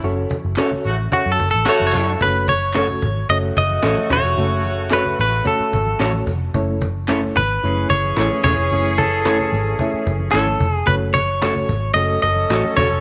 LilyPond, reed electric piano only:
\new Staff \with { instrumentName = "Reed electric piano" } { \time 4/4 \key fis \dorian \tempo 4 = 111 <cis' fis' a' cis''>8 r8 <cis' fis' a' cis''>8 r8 <cis' fis' a' cis''>8 r8 <cis' fis' a' cis''>8 r8 | <a cis' fis' a' cis''>8 r8 <a cis' fis' a' cis''>8 r8 <a cis' fis' a' cis''>8 r8 <a cis' fis' a' cis''>8 r8 | <a cis' fis' a' cis''>8 r8 <a cis' fis' a' cis''>8 r8 <a cis' fis' a' cis''>8 r8 <a cis' fis' a' cis''>8 r8 | <a cis' e' a' cis''>8 r8 <a cis' e' a' cis''>8 r8 <a cis' e' cis''>8 r8 <a cis' e' cis''>8 r8 |
<a cis' e' cis''>8 r8 <a cis' e' cis''>8 r8 <a cis' e' cis'' e''>8 r8 <a cis' e' a' cis''>8 r8 | <a cis' fis' a' cis''>8 r8 <a cis' fis' a' cis''>8 r8 <a cis' fis' a' cis''>8 r8 <a cis' fis' a' cis''>8 r8 | }